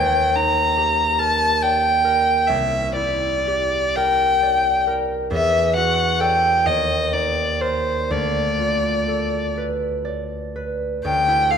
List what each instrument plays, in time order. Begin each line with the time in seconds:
Already playing: harp D#2 D#4 D#5, violin G5
0.36 harp D#4, violin A#5
0.77 harp G4
1.19 harp A#4, violin A5
1.62 harp D5, violin G5
2.04 harp A#4
2.47 harp C2, violin E5
2.95 harp E4, violin D5
3.47 harp G4
3.95 harp A#4, violin G5
4.43 harp D5
4.87 harp A#4
5.31 harp E2, violin E5
5.76 harp F#4, violin F#5
6.20 harp A4 D5, violin G5
6.66 harp D#2, violin D#5
7.13 harp D#4, violin D5
7.61 harp A#4 D5, violin C5
8.10 harp D2, violin D5
8.59 harp F4
9.08 harp A4
9.57 harp B4
10.05 harp D5
10.56 harp B4
11.05 harp D2, violin G5
11.28 harp E4
11.50 harp A4, violin F5